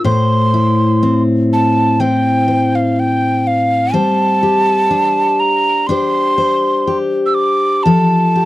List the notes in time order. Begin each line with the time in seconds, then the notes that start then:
Already playing: D4 F4
0.04 A2 C5 C6
0.54 E4
1.03 C4
1.53 A5
2.00 C4 E4 C5 G5
2.48 C5
2.75 F5
3.00 G5
3.47 F5
3.94 G3 C5 A5
4.43 G4
4.91 D4
5.40 A#5
5.87 D4 G4 C6
5.91 C5
6.38 C5
6.87 G4
7.26 E6
7.34 D6
7.83 F3 A4 A5
8.36 G4